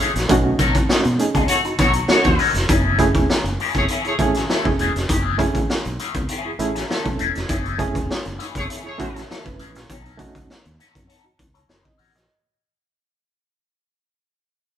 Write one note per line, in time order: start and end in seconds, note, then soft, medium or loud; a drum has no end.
0.00 0.11 E3 medium
0.00 0.11 A3 medium
0.00 0.13 A3 loud
0.00 0.11 C#4 medium
0.00 0.13 G#4 loud
0.00 0.12 G#4 medium
0.00 0.13 C#5 loud
0.00 closed hi-hat medium
0.15 0.27 A#1 loud
0.15 muted clean electric guitar stroke medium
0.15 snare soft
0.15 closed hi-hat medium
0.29 0.53 B1 loud
0.29 0.57 A3 loud
0.29 0.58 C#4 loud
0.29 0.58 D#4 medium
0.29 0.58 F#4 loud
0.29 kick loud
0.29 closed hi-hat medium
0.58 0.72 B1 medium
0.58 0.74 F#3 loud
0.58 0.74 C#4 medium
0.58 0.74 D#4 loud
0.58 0.74 A4 medium
0.58 kick medium
0.58 closed hi-hat medium
0.75 kick medium
0.75 closed hi-hat medium
0.89 1.04 A3 medium
0.89 1.04 C#4 medium
0.89 1.04 D#4 medium
0.89 1.05 F#4 medium
0.89 muted fingered electric bass stroke soft
0.89 muted clean electric guitar stroke soft
0.89 snare loud
1.04 1.16 B2 medium
1.04 muted clean electric guitar stroke soft
1.04 closed hi-hat soft
1.19 1.41 A3 medium
1.19 1.41 C#4 medium
1.19 1.41 D#4 medium
1.19 1.41 G#4 medium
1.19 closed hi-hat medium
1.35 1.46 C#2 medium
1.35 1.47 F#3 medium
1.35 1.47 C#4 medium
1.35 1.47 D#4 medium
1.35 1.48 A4 medium
1.35 kick medium
1.35 closed hi-hat soft
1.48 1.58 A3 medium
1.48 1.58 F#4 loud
1.48 1.58 C#5 loud
1.48 muted clean electric guitar stroke medium
1.48 closed hi-hat medium
1.64 1.72 D#4 loud
1.64 1.72 F#4 loud
1.64 muted clean electric guitar stroke soft
1.64 closed hi-hat soft
1.78 2.03 B1 medium
1.78 1.99 F#3 medium
1.78 1.90 A3 medium
1.78 1.94 C#4 loud
1.78 1.87 D#4 soft
1.78 1.93 D#4 medium
1.78 1.90 F#4 medium
1.78 1.88 F#4 soft
1.78 1.93 A4 medium
1.78 1.90 C#5 medium
1.78 kick loud
1.78 closed hi-hat medium
1.93 2.02 D#4 soft
1.93 2.03 F#4 soft
1.93 muted clean electric guitar stroke medium
1.93 closed hi-hat medium
2.08 2.37 A3 medium
2.08 2.53 A3 loud
2.08 2.38 C#4 medium
2.08 2.38 D#4 medium
2.08 2.53 F#4 medium
2.08 2.38 F#4 loud
2.08 2.53 C#5 loud
2.08 muted clean electric guitar stroke soft
2.08 muted fingered electric bass stroke soft
2.08 snare loud
2.24 2.36 D#2 medium
2.24 kick loud
2.24 closed hi-hat soft
2.38 2.50 F#3 medium
2.38 2.51 C#4 medium
2.38 2.51 D#4 medium
2.38 2.51 A4 medium
2.38 open hi-hat medium
2.54 2.66 F1 loud
2.54 muted clean electric guitar stroke soft
2.54 snare soft
2.54 closed hi-hat medium
2.69 3.15 F#1 loud
2.69 2.97 E3 medium
2.69 2.97 A3 medium
2.69 2.97 C#4 medium
2.69 2.98 G#4 medium
2.69 kick loud
2.69 closed hi-hat medium
2.99 3.34 A3 loud
2.99 3.34 C#4 loud
2.99 3.35 E4 loud
2.99 3.35 G#4 loud
2.99 kick medium
2.99 closed hi-hat medium
3.15 3.26 E1 loud
3.15 muted clean electric guitar stroke soft
3.15 kick loud
3.15 closed hi-hat medium
3.30 muted clean electric guitar stroke soft
3.30 snare loud
3.44 3.56 F#1 loud
3.44 muted clean electric guitar stroke soft
3.44 closed hi-hat soft
3.60 3.80 E3 medium
3.60 3.77 A3 medium
3.60 3.77 C#4 medium
3.60 3.76 G#4 medium
3.60 open hi-hat medium
3.74 3.86 F#1 medium
3.74 3.85 A3 medium
3.74 3.82 E4 soft
3.74 3.85 G#4 medium
3.74 3.83 A4 soft
3.74 3.85 C#5 loud
3.74 muted clean electric guitar stroke medium
3.74 kick medium
3.74 closed hi-hat soft
3.88 4.05 E3 medium
3.88 4.05 A3 loud
3.88 4.05 C#4 loud
3.88 3.96 E4 soft
3.88 3.97 G#4 soft
3.88 4.05 G#4 loud
3.88 closed hi-hat medium
4.05 4.15 A3 loud
4.05 4.12 E4 medium
4.05 4.15 G#4 medium
4.05 4.12 G#4 medium
4.05 4.14 C#5 loud
4.05 closed hi-hat soft
4.19 4.43 A1 medium
4.19 4.41 A3 loud
4.19 4.41 C#4 loud
4.19 4.41 E4 loud
4.19 4.42 G#4 loud
4.19 muted clean electric guitar stroke soft
4.19 kick loud
4.19 closed hi-hat medium
4.34 4.47 E3 medium
4.34 4.46 A3 medium
4.34 4.46 C#4 medium
4.34 4.46 G#4 medium
4.34 snare soft
4.34 closed hi-hat medium
4.49 4.64 E3 medium
4.49 4.65 A3 medium
4.49 4.65 C#4 loud
4.49 4.65 A4 medium
4.49 snare loud
4.65 4.76 F#1 loud
4.65 5.00 A3 medium
4.65 5.00 C#4 medium
4.65 5.00 E4 medium
4.65 5.00 G#4 loud
4.65 muted clean electric guitar stroke soft
4.65 kick loud
4.78 4.91 E1 medium
4.78 4.91 E3 medium
4.78 4.92 A3 medium
4.78 4.92 C#4 medium
4.78 4.92 G#4 medium
4.78 closed hi-hat medium
4.94 5.06 F1 medium
4.94 muted clean electric guitar stroke soft
4.94 snare soft
4.94 closed hi-hat medium
5.09 5.46 F#1 loud
5.09 5.21 D#3 medium
5.09 5.22 G#3 medium
5.09 5.23 C4 medium
5.09 5.23 G4 medium
5.09 kick loud
5.09 closed hi-hat loud
5.21 5.37 E3 medium
5.21 5.38 A3 medium
5.21 5.38 C#4 medium
5.21 5.38 G#4 medium
5.38 5.74 A3 loud
5.38 5.74 C#4 loud
5.38 5.75 E4 loud
5.38 5.75 G#4 loud
5.38 kick medium
5.38 closed hi-hat medium
5.55 5.66 A1 medium
5.55 muted clean electric guitar stroke soft
5.55 kick medium
5.55 closed hi-hat soft
5.70 muted clean electric guitar stroke soft
5.70 snare loud
5.85 5.97 B1 loud
5.85 muted clean electric guitar stroke soft
5.85 closed hi-hat soft
5.99 6.14 E3 medium
5.99 6.14 A3 medium
5.99 6.14 C#4 medium
5.99 6.14 G#4 medium
5.99 closed hi-hat medium
6.14 6.26 C#2 medium
6.14 6.22 E4 soft
6.14 6.22 G#4 soft
6.14 muted clean electric guitar stroke medium
6.14 kick medium
6.14 closed hi-hat soft
6.29 6.49 E3 loud
6.29 6.49 A3 medium
6.29 6.50 C#4 medium
6.29 6.37 E4 soft
6.29 6.38 G#4 soft
6.29 6.50 G#4 loud
6.29 closed hi-hat medium
6.45 6.52 E4 medium
6.45 6.53 G#4 loud
6.59 6.83 A1 medium
6.59 6.81 A3 loud
6.59 6.81 C#4 loud
6.59 6.81 E4 loud
6.59 6.81 G#4 loud
6.59 muted clean electric guitar stroke soft
6.59 closed hi-hat medium
6.75 6.86 E3 medium
6.75 6.86 A3 medium
6.75 6.85 C#4 medium
6.75 6.85 G#4 medium
6.75 snare soft
6.75 closed hi-hat medium
6.90 7.04 E3 medium
6.90 7.04 A3 medium
6.90 7.05 C#4 medium
6.90 7.05 A4 loud
6.90 snare loud
7.05 7.17 B1 medium
7.05 7.40 A3 loud
7.05 7.40 C#4 medium
7.05 7.40 E4 medium
7.05 7.41 A4 loud
7.05 muted clean electric guitar stroke medium
7.05 kick medium
7.05 closed hi-hat soft
7.19 7.32 E1 medium
7.19 7.31 E3 medium
7.19 7.31 A3 medium
7.19 7.32 C#4 medium
7.19 7.32 G#4 medium
7.19 closed hi-hat medium
7.35 7.47 F1 medium
7.35 muted clean electric guitar stroke soft
7.35 snare soft
7.35 closed hi-hat soft
7.49 7.95 F#1 medium
7.49 7.77 E3 medium
7.49 7.77 A3 medium
7.49 7.77 C#4 medium
7.49 7.78 G#4 medium
7.49 kick loud
7.49 closed hi-hat medium
7.65 closed hi-hat soft
7.78 8.14 A3 loud
7.78 8.15 C#4 loud
7.78 8.15 E4 loud
7.78 8.15 G#4 loud
7.78 kick medium
7.78 closed hi-hat medium
7.95 8.06 E1 loud
7.95 muted clean electric guitar stroke soft
7.95 kick medium
7.95 closed hi-hat medium
8.08 muted clean electric guitar stroke soft
8.08 snare loud
8.25 8.37 F#1 medium
8.25 muted clean electric guitar stroke soft
8.25 closed hi-hat soft
8.39 8.54 E3 medium
8.39 8.54 A3 medium
8.39 8.54 C#4 medium
8.39 8.55 G#4 medium
8.39 closed hi-hat medium
8.55 8.66 F#1 medium
8.55 8.66 A3 medium
8.55 8.62 E4 soft
8.55 8.63 G#4 soft
8.55 8.65 G#4 medium
8.55 8.65 C#5 loud
8.55 muted clean electric guitar stroke medium
8.55 kick medium
8.55 closed hi-hat medium
8.68 8.84 E3 medium
8.68 8.84 A3 medium
8.68 8.85 C#4 loud
8.68 8.76 E4 soft
8.68 8.77 G#4 soft
8.68 8.85 G#4 medium
8.68 closed hi-hat medium
8.84 9.23 A3 medium
8.84 8.91 E4 medium
8.84 8.92 G#4 loud
8.84 9.23 G#4 loud
8.84 9.23 C#5 loud
8.98 9.23 A1 medium
8.98 9.20 A3 loud
8.98 9.20 C#4 loud
8.98 9.21 E4 loud
8.98 9.21 F#4 loud
8.98 muted clean electric guitar stroke soft
8.98 kick loud
8.98 closed hi-hat medium
9.16 9.26 E3 medium
9.16 9.26 A3 medium
9.16 9.26 C#4 medium
9.16 9.26 G#4 medium
9.16 snare soft
9.16 closed hi-hat medium
9.28 9.44 E3 medium
9.28 9.44 A3 medium
9.28 9.44 C#4 medium
9.28 9.44 A4 loud
9.28 snare loud
9.44 9.57 F#1 loud
9.44 9.79 A3 medium
9.44 9.80 C#4 medium
9.44 9.80 E4 medium
9.44 9.80 B4 loud
9.44 muted clean electric guitar stroke medium
9.44 kick medium
9.44 closed hi-hat soft
9.59 9.76 A1 medium
9.59 9.71 E3 medium
9.59 9.71 A3 medium
9.59 9.71 C#4 medium
9.59 9.71 G#4 medium
9.59 closed hi-hat medium
9.75 9.87 A#1 loud
9.75 muted clean electric guitar stroke soft
9.75 snare soft
9.75 closed hi-hat soft
9.89 10.26 B1 loud
9.89 10.18 F#3 medium
9.89 10.18 C#4 medium
9.89 10.18 D#4 medium
9.89 10.18 A4 medium
9.89 kick loud
9.89 closed hi-hat loud
10.06 closed hi-hat soft
10.18 10.54 A3 loud
10.18 10.54 C#4 loud
10.18 10.54 D#4 loud
10.18 10.55 F#4 loud
10.18 kick medium
10.18 closed hi-hat medium
10.35 10.46 C#2 medium
10.35 muted clean electric guitar stroke soft
10.35 kick medium
10.35 closed hi-hat medium
10.50 muted clean electric guitar stroke soft
10.50 snare loud
10.65 10.77 D#2 medium
10.65 muted clean electric guitar stroke soft
10.65 closed hi-hat soft
10.79 10.94 F#3 medium
10.79 10.94 C#4 medium
10.79 10.94 D#4 loud
10.79 10.94 A4 loud
10.79 closed hi-hat medium
10.95 11.06 F#2 medium
10.95 11.02 D#4 soft
10.95 11.03 F#4 soft
10.95 muted clean electric guitar stroke medium
10.95 kick medium
10.95 closed hi-hat soft
11.07 11.23 F#3 medium
11.07 11.24 C#4 medium
11.07 11.17 D#4 soft
11.07 11.24 D#4 loud
11.07 11.24 A4 loud
11.07 11.17 A4 soft
11.07 closed hi-hat medium
11.24 11.31 D#4 medium
11.24 11.32 F#4 loud
11.38 11.63 C#2 medium
11.38 muted clean electric guitar stroke soft
11.38 kick loud
11.38 closed hi-hat medium
11.54 11.65 F#3 soft
11.54 11.65 C#4 soft
11.54 11.65 D#4 soft
11.54 11.65 A4 medium
11.54 11.83 C#5 medium
11.54 closed hi-hat medium
11.68 11.82 F#1 medium
11.68 11.83 F#3 medium
11.68 11.83 C#4 medium
11.68 11.83 D#4 medium
11.68 11.83 B4 medium
11.68 snare loud
11.84 11.98 D#5 medium
11.84 muted clean electric guitar stroke soft
11.84 kick loud
11.98 12.15 A1 medium
11.98 12.10 F#3 medium
11.98 12.10 C#4 medium
11.98 12.11 D#4 medium
11.98 12.11 A4 medium
11.98 12.14 F#5 medium
11.98 open hi-hat medium
12.15 12.26 A#1 loud
12.15 12.44 D#5 medium
12.15 muted clean electric guitar stroke soft
12.15 snare soft
12.15 closed hi-hat soft